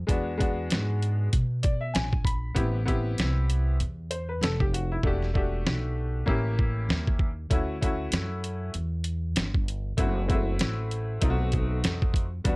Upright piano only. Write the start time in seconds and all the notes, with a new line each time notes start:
0.07 G#3 B3 D4 F#4
0.38 G#3 B3 D4 F#4
1.63 D5
1.81 E5
1.94 G#5
2.25 B5
2.55 B3 C4 E4 G4
2.86 B3 C4 E4 G4
4.11 C5
4.29 B4
4.42 A4
4.60 G4
4.74 F#4
4.92 E4
5.04 A3 D4 F#4 G4
5.34 A3 D4 F#4 G4
6.26 A#3 C#4 E4 G4
7.50 A3 C#4 E4 F#4
7.81 A3 C#4 E4 F#4
9.97 A3 C4 E4 F#4
10.27 G#3 C4 E4 F#4
10.34 A3
11.21 A3 C4 D#4 F4
11.30 F#4
12.44 G3 B3 D4 F#4